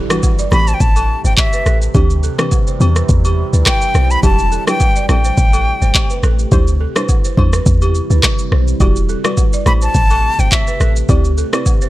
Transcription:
Already playing: A4, impact
0.10 E3 G3 D4 F#4 B4, cross-stick, high agogo, shaker
0.23 kick, low woodblock, shaker
0.39 D5, shaker
0.52 A1 C3 E3 A3 C4 G4 B5, cross-stick, high agogo, shaker
0.67 C5 A5, shaker
0.74 G5
0.80 A1 A5, kick, shaker
0.96 A4, high agogo, shaker
1.25 G1 C5 G5, shaker
1.37 E5, kick, clap, high agogo, shaker
1.53 B4, shaker
1.66 A1 A4, cross-stick, shaker
1.82 shaker
1.94 D2 E3 G3 C4 D4 E4 G4, kick, high agogo, shaker
2.10 shaker
2.23 A4, shaker
2.38 E3 C4 D4 G4 B4, cross-stick, high agogo, shaker
2.51 kick, low woodblock, shaker
2.67 C5, shaker
2.80 E2 E3 C4 D4 G4, high agogo, shaker
2.96 B4, cross-stick, shaker
3.09 E2, kick, shaker
3.25 G4, high agogo, shaker
3.53 D2 B4, shaker
3.66 G5, kick, cross-stick, clap, high agogo, shaker
3.82 shaker
3.95 B1 C5, cross-stick, shaker
4.11 B5, shaker
4.23 E1 F#3 D4 E4 G4 A5, kick, high agogo, shaker
4.39 shaker
4.52 A4, shaker
4.67 F#3 D4 E4 G4 B4 G5, cross-stick, high agogo, shaker
4.80 kick, low woodblock, shaker
4.96 D5, shaker
5.09 A1 C3 G3 A3 C4 E4 G4 A4 G5, cross-stick, high agogo, shaker
5.24 C5, shaker
5.37 A1, kick, shaker
5.53 A4, high agogo, shaker
5.82 G1 C5, shaker
5.94 kick, clap, high agogo, shaker
6.10 B4, shaker
6.23 A1 A4, cross-stick, shaker
6.39 shaker
6.51 D2 C3 G3 D4 E4 G4 C5, kick, high agogo, shaker
6.67 shaker
6.81 A4
6.96 G3 D4 E4 B4 C5, cross-stick, high agogo, shaker
7.09 kick, low woodblock, shaker
7.24 C5, shaker
7.37 E2 G3 D4 E4 C5, kick, high agogo
7.53 B4, cross-stick, shaker
7.66 E2, kick, shaker
7.82 G4, high agogo, shaker
7.95 shaker
8.10 D2 B4, shaker
8.23 kick, cross-stick, clap, high agogo, shaker
8.39 shaker
8.52 B1 C5, cross-stick
8.68 shaker
8.80 E1 G3 E4 F#4 G4 D5, kick, high agogo, shaker
8.96 shaker
9.09 A4, shaker
9.24 G3 E4 F#4 B4 D5, cross-stick, high agogo, shaker
9.37 kick, low woodblock, shaker
9.53 D5, shaker
9.66 A1 C3 A3 E4 G4 C5 B5, cross-stick, high agogo, shaker
9.82 C5 A5, shaker
9.95 A1, kick, shaker
10.10 A4, high agogo, shaker
10.39 G1 C5 G5, shaker
10.51 E5, kick, clap, high agogo, shaker
10.67 B4, shaker
10.80 A1 A4, cross-stick, shaker
10.96 shaker
11.09 D2 G3 C4 E4 G4 D5, kick, high agogo, shaker
11.24 shaker
11.38 A4, shaker
11.53 C4 E4 G4 B4 D5, cross-stick, high agogo, shaker
11.66 kick, low woodblock, shaker
11.82 C5, shaker

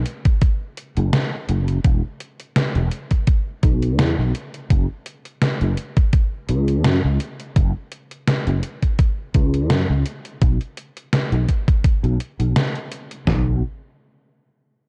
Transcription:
0.06 closed hi-hat
0.25 kick, closed hi-hat
0.41 kick, closed hi-hat
0.77 closed hi-hat
0.97 F#1, closed hi-hat
1.13 snare, closed hi-hat
1.49 F#1, closed hi-hat
1.68 closed hi-hat
1.84 E1, kick, closed hi-hat
2.20 closed hi-hat
2.39 closed hi-hat
2.56 snare, closed hi-hat
2.75 E1, closed hi-hat
2.91 closed hi-hat
3.11 kick, closed hi-hat
3.27 kick, closed hi-hat
3.63 B1, kick, closed hi-hat
3.82 closed hi-hat
3.99 E2, snare, closed hi-hat
4.18 B1
4.35 closed hi-hat
4.54 closed hi-hat
4.70 F#1, kick, closed hi-hat
5.06 closed hi-hat
5.25 closed hi-hat
5.42 snare, closed hi-hat
5.61 F#1, closed hi-hat
5.77 closed hi-hat
5.97 kick, closed hi-hat
6.13 kick, closed hi-hat
6.49 C#2, closed hi-hat
6.68 closed hi-hat
6.85 F#2, snare, closed hi-hat
7.04 C#2
7.20 closed hi-hat
7.40 closed hi-hat
7.56 F#1, kick, closed hi-hat
7.92 closed hi-hat
8.11 closed hi-hat
8.28 snare, closed hi-hat
8.47 F#1, closed hi-hat
8.63 closed hi-hat
8.82 kick, closed hi-hat
8.99 kick, closed hi-hat
9.34 C#2, kick, closed hi-hat
9.54 closed hi-hat
9.70 F#2, snare, closed hi-hat
9.89 C#2
10.06 closed hi-hat
10.25 closed hi-hat
10.42 B1, kick, closed hi-hat
10.61 closed hi-hat
10.77 closed hi-hat
10.97 closed hi-hat
11.13 snare, closed hi-hat
11.32 B1, closed hi-hat
11.49 kick, closed hi-hat
11.68 kick, closed hi-hat
11.84 kick, closed hi-hat
12.03 B1, closed hi-hat
12.20 closed hi-hat
12.39 B1, closed hi-hat
12.56 snare, closed hi-hat
12.75 closed hi-hat
12.92 closed hi-hat
13.11 closed hi-hat
13.27 B1, snare, floor tom

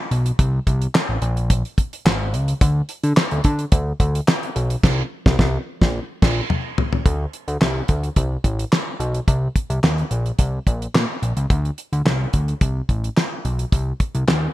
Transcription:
0.11 B1, closed hi-hat
0.26 closed hi-hat
0.39 C2, kick, closed hi-hat
0.67 C2, kick, closed hi-hat
0.82 closed hi-hat
0.95 snare, clap
1.09 A1
1.22 A#1, closed hi-hat
1.37 closed hi-hat
1.50 kick, closed hi-hat
1.65 closed hi-hat
1.78 kick, closed hi-hat
1.93 closed hi-hat
2.05 G#1, snare, clap
2.33 C#2, closed hi-hat
2.48 closed hi-hat
2.61 D2, kick, closed hi-hat
2.89 closed hi-hat
3.04 D3, closed hi-hat
3.17 snare, clap
3.31 D2, closed hi-hat
3.44 D3, kick, closed hi-hat
3.59 closed hi-hat
3.72 D2, kick, closed hi-hat
4.00 D2, kick, closed hi-hat
4.15 closed hi-hat
4.28 snare, clap
4.43 closed hi-hat
4.56 B1, closed hi-hat
4.70 closed hi-hat
4.83 C2, kick, snare, crash
5.26 C2, kick, snare
5.39 C2, kick, snare
5.82 A#1, kick, snare
6.22 A#1, kick, snare, crash
6.50 mid tom
6.78 floor tom
6.93 floor tom
7.06 D2, kick, closed hi-hat
7.33 closed hi-hat
7.48 D2, closed hi-hat
7.61 C2, snare, clap
7.88 D2, kick, closed hi-hat
8.03 closed hi-hat
8.16 C2, kick, closed hi-hat
8.44 A1, kick, closed hi-hat
8.59 closed hi-hat
8.72 snare, clap
9.00 B1, closed hi-hat
9.14 closed hi-hat
9.28 C2, kick, closed hi-hat
9.56 kick, closed hi-hat
9.70 C2, closed hi-hat
9.83 D#2, snare, clap
9.98 closed hi-hat
10.11 A#1, closed hi-hat
10.26 closed hi-hat
10.39 C2, kick, closed hi-hat
10.67 A#1, kick, closed hi-hat
10.82 closed hi-hat
10.94 A#2, snare, clap
11.22 A#1, closed hi-hat
11.37 C#2, closed hi-hat
11.50 D2, kick, closed hi-hat
11.65 closed hi-hat
11.78 closed hi-hat
11.93 D2, closed hi-hat
12.05 C2, snare, clap
12.33 D2, kick, closed hi-hat
12.48 closed hi-hat
12.61 C2, kick, closed hi-hat
12.89 A1, kick, closed hi-hat
13.04 closed hi-hat
13.17 snare, clap
13.45 B1, closed hi-hat
13.59 closed hi-hat
13.72 C2, kick, closed hi-hat
14.00 kick, closed hi-hat
14.15 C2, closed hi-hat
14.28 D#2, snare, clap

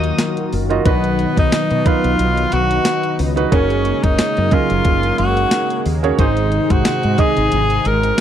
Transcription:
Already playing: D#2 D#3 F#3 A#3 D#4 F4 F#4 A#4 D#5 F5
0.04 closed hi-hat
0.18 snare, closed hi-hat, tambourine
0.37 closed hi-hat
0.53 F#1, open hi-hat
0.69 A#3 D#4 F4 F#4 D#5, closed hi-hat
0.85 B1 B2 F#3 B3 D4 D#4 F#4 B4 D#5, kick, closed hi-hat
0.91 D#4
1.04 closed hi-hat
1.19 closed hi-hat
1.37 B1 D#4, kick, closed hi-hat
1.52 snare, closed hi-hat, tambourine
1.71 B2, closed hi-hat
1.85 F#3 D#4 F4 B4, kick, closed hi-hat
2.04 B1, closed hi-hat
2.19 B1, closed hi-hat
2.37 closed hi-hat
2.52 B1 F#4, closed hi-hat
2.71 closed hi-hat
2.85 snare, closed hi-hat, tambourine
3.03 closed hi-hat
3.19 C#2, open hi-hat
3.36 D#4 F#4 B4, closed hi-hat
3.51 F#1 C#3 G#3 A#3 C#4 F#4 G#4 A#4 C#5, kick, closed hi-hat
3.70 closed hi-hat
3.85 closed hi-hat
4.03 F#1 D#4, kick, closed hi-hat
4.19 muted fretless electric bass stroke, snare, closed hi-hat, tambourine
4.37 F#2, closed hi-hat
4.51 F#3 A#3 C#4 F4 G#4 D#5, kick, closed hi-hat
4.70 F#1, closed hi-hat
4.85 F#1, kick, closed hi-hat
5.03 closed hi-hat
5.18 F#1 F#4, closed hi-hat
5.37 closed hi-hat
5.51 snare, closed hi-hat, tambourine
5.70 closed hi-hat
5.86 D#2, open hi-hat
6.03 A#3 C#4 F#4 G#4 C#5, closed hi-hat
6.18 G#1 G#2 C3 D#3 D#4 G#4 C5, kick, closed hi-hat
6.37 closed hi-hat
6.52 closed hi-hat
6.70 G#1 F#4, kick, closed hi-hat
6.85 snare, closed hi-hat, tambourine
7.03 G#2, closed hi-hat
7.18 D#4 G#4 D#5, kick, closed hi-hat
7.37 G#1, closed hi-hat
7.52 G#1, closed hi-hat
7.70 closed hi-hat
7.85 G#1 A#4, closed hi-hat
8.03 closed hi-hat

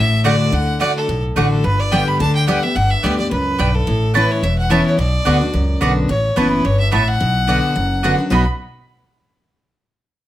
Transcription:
Already playing: A1 A2 E5
0.24 D3 A3 D4 F#4 D5 F#5
0.52 D2 D3 F#5
0.80 D3 A3 D4 F#4 D5 F#5
0.97 A4
1.08 B1 A2
1.36 A1 D3 A3 D4 F#4 D5 F#5
1.52 A4
1.64 G1 G2 B4
1.80 D5
1.91 D3 G3 B3 G4 D5 G5
2.08 B5
2.20 D2 D3 A5
2.35 G5
2.47 D3 G3 B3 G4 D5 F#5 G5
2.63 B3 G4 E5
2.75 G1 G2 F#5
2.90 E5
3.03 D2 D3 G3 B3 G4 D5 G5
3.18 B3 G4 D5
3.31 C#2 F#2 B4
3.58 B1 G2 B3 G4 D5 G5
3.74 A4
3.87 A1 A2
4.14 E3 B3 C#4 E4 B4 C#5 A5
4.31 C#5
4.43 E1 E2 E5
4.58 F#5
4.70 E3 B3 C#4 E4 C#5 E5 A5
4.86 C#5
4.98 B1 B2 D5
5.25 D2 D3 B3 D4 F#4 D5 F#5
5.41 D4 F#4
5.53 C#2 F#2
5.81 B1 D3 B3 D4 F#4 D5 F#5
6.09 A1 A2 C#5
6.36 F#1 E3 B3 C#4 E4 B4 C#5 A5
6.65 G1 G2 C#5
6.80 E5
6.92 A1 A2 B3 E4 C#5 E5 A5
7.08 F#5
7.21 B1 B2
7.47 D3 B3 D4 F#4 D5 F#5
7.76 F#1 F#2
8.03 D3 B3 D4 F#4 D5 F#5
8.18 D4 F#4
8.30 B1 B2 F#3 B3 D#4 F#4 D#5 B5

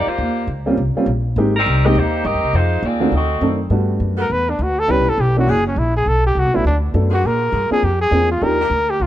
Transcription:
0.07 A#3 F4 G4 C5, muted upright bass stroke
0.18 D#2
0.47 C#2
0.66 G3 A#3 C4 C#4 F4
0.77 C2
0.95 G3 A#3 C4 C#4 F4, muted upright bass stroke
1.06 A#1
1.36 G#1 G#3 A#3 C4 D#4 G4
1.57 G3 C4 D#4 A#4
1.66 C2
1.85 G#3 A#3 C4 D#4 G4 A#4 D#5
1.95 D#2 A#3 D#4 G4 C5
2.25 G2 C4 G4 A#4 D#5
2.34 D#2
2.43 C2
2.53 F2 G#3 D#4 F4 C5
2.83 D#2 C4 F4 G#4 D5
3.00 D#3 A3 C4 D4 F#4
3.12 D2 C4 F#4 D#5
3.16 A4
3.41 F#2 D#3 A3 C4 D4 A4
3.70 G2 G3 A3 B3 D4 F#4
4.00 F#2
4.17 G3 B3 F#4 A4 A#4
4.30 E2 B4
4.50 D4
4.59 D2
4.63 F#4
4.79 A4
4.88 C#2 G3 B3 C#4 E4 G4 B4
4.99 B1
5.08 G1 A4
5.18 B1 G4
5.36 E3 A#3 C#4 D4 E4 F#4
5.46 F#1 F#3 D4 E4 F#4 G#4
5.67 C#4
5.76 A#1 E4
5.97 G#4
6.06 B1 A4
6.26 G4
6.35 C2
6.39 F#4
6.45 B1
6.54 A1 F#3 A3 B3 D4 E4 F#4
6.64 D2 D4
6.94 F#2 F#3 A3 B3 D4 A4
7.10 F3 A#3 D4 F#4 G#4
7.24 A#2 A#4
7.51 G2 F3 A#3 D4 G#4
7.70 F3 A#3 C4 D4 G#4, muted upright bass stroke
7.83 F2 G4
8.01 G#4
8.11 E2 F3 A#3 C4 D4 G#4
8.31 F4
8.42 D#2 F3 A#3 D4 D#4 G4 A#4
8.61 D#3 A#3 D4 G4
8.70 D2
8.90 G4
9.00 C2 F4

